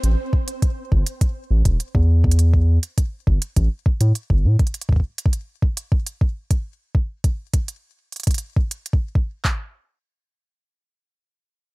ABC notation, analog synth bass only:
X:1
M:4/4
L:1/16
Q:1/4=102
K:Aphr
V:1 name="Analog synth bass" clef=bass
A,,, z4 z G,,, z3 A,,, E,,, z E,,3- | E,,3 z3 G,,, z A,,, z2 A,, z G,,, A,, z | z16 | z16 |
z16 |]